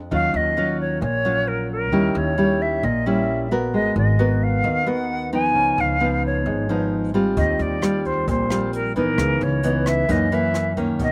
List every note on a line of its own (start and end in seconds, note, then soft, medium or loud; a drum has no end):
0.11 0.33 D#2 medium
0.11 1.00 D#3 soft
0.11 0.53 F#3 medium
0.11 0.53 C#4 soft
0.11 0.54 F4 medium
0.11 0.38 F5 loud
0.34 0.98 D#2 medium
0.34 0.80 D#5 medium
0.57 1.02 F#3 medium
0.57 1.02 C#4 medium
0.57 1.02 F4 medium
0.81 1.01 C#5 medium
1.01 1.93 A#1 medium
1.01 1.90 A#2 medium
1.01 1.49 C#5 medium
1.25 1.89 F#3 medium
1.25 1.90 C#4 medium
1.25 1.90 F4 medium
1.48 1.70 A#4 medium
1.72 2.19 A#4 medium
1.92 2.14 D#2 medium
1.92 2.81 D#3 medium
1.92 2.34 G3 medium
1.92 2.34 C#4 medium
1.92 2.35 E4 medium
2.15 2.79 D#2 loud
2.15 2.63 C#5 medium
2.38 2.83 G3 medium
2.38 2.83 C#4 medium
2.38 2.84 E4 medium
2.62 2.86 E5 medium
2.83 3.74 A#1 medium
2.83 3.72 A#2 medium
2.83 3.08 D#5 medium
3.06 3.48 G3 medium
3.06 3.48 C#4 medium
3.06 3.48 E4 medium
3.06 3.52 E5 medium
3.51 4.16 B3 medium
3.51 4.16 F#4 medium
3.51 4.16 A#4 medium
3.74 3.95 G#1 medium
3.74 4.63 G#3 medium
3.74 3.95 D#5 medium
3.96 4.60 G#1 medium
3.96 4.45 D#5 medium
4.19 4.84 B3 medium
4.19 4.84 F#4 medium
4.19 4.84 A#4 medium
4.43 4.90 F5 medium
4.64 5.55 D#2 medium
4.64 5.53 D#3 medium
4.86 5.29 B3 medium
4.86 5.29 F#4 medium
4.86 5.29 A#4 medium
4.86 5.33 F#5 loud
5.33 5.97 F3 medium
5.33 5.97 B3 medium
5.33 5.97 D#4 medium
5.33 5.82 G#5 loud
5.55 5.76 C#2 medium
5.55 6.44 C#3 medium
5.78 6.42 C#2 medium
5.78 6.25 F5 medium
6.00 6.65 F3 medium
6.00 6.65 B3 medium
6.00 6.66 D#4 medium
6.27 6.89 C#5 medium
6.46 7.38 G#1 medium
6.46 7.35 G#2 medium
6.69 7.11 F3 medium
6.69 7.11 B3 medium
6.69 7.11 D#4 medium
7.14 7.79 G3 medium
7.14 7.79 C4 medium
7.14 7.79 F4 medium
7.37 7.58 D#2 medium
7.37 8.25 D#3 medium
7.37 7.63 D#5 medium
7.37 kick medium
7.37 closed hi-hat soft
7.59 8.24 D#2 medium
7.59 8.08 D5 medium
7.59 closed hi-hat soft
7.82 8.46 G3 medium
7.82 8.47 C4 medium
7.82 8.47 F4 medium
7.82 cross-stick medium
7.82 closed hi-hat soft
8.05 8.28 C5 medium
8.05 kick soft
8.05 closed hi-hat soft
8.28 9.18 A#1 medium
8.28 9.16 A#2 medium
8.28 8.71 C5 medium
8.28 kick medium
8.28 closed hi-hat soft
8.50 8.92 G3 medium
8.50 8.92 C4 medium
8.50 8.93 F4 medium
8.50 cross-stick medium
8.50 closed hi-hat soft
8.73 8.95 A#4 medium
8.73 closed hi-hat soft
8.96 9.60 E3 medium
8.96 9.60 B3 medium
8.96 9.61 D#4 medium
8.96 9.44 A#4 medium
8.96 kick soft
8.96 closed hi-hat soft
9.18 9.40 C#2 medium
9.18 10.07 C#3 soft
9.18 kick medium
9.18 cross-stick medium
9.18 closed hi-hat soft
9.41 10.05 C#2 medium
9.41 9.89 C#5 medium
9.41 closed hi-hat soft
9.63 10.07 E3 medium
9.63 10.07 B3 medium
9.63 10.08 D#4 medium
9.63 closed hi-hat soft
9.86 10.13 E5 medium
9.86 kick soft
9.86 cross-stick medium
9.86 closed hi-hat soft
10.08 10.97 F#2 medium
10.08 11.00 F#2 medium
10.08 10.28 E3 medium
10.08 10.28 A#3 medium
10.08 10.28 D#4 medium
10.08 10.36 D#5 medium
10.08 kick medium
10.08 closed hi-hat soft
10.32 10.74 E3 medium
10.32 10.74 A#3 medium
10.32 10.78 E5 medium
10.32 closed hi-hat soft
10.54 cross-stick soft
10.54 closed hi-hat soft
10.77 11.12 D#3 medium
10.77 11.12 A#3 medium
10.77 11.12 C#4 medium
10.77 kick soft
10.77 closed hi-hat soft
10.99 11.12 B1 medium
10.99 11.12 B2 medium
10.99 11.12 D#5 medium
10.99 kick medium
10.99 closed hi-hat soft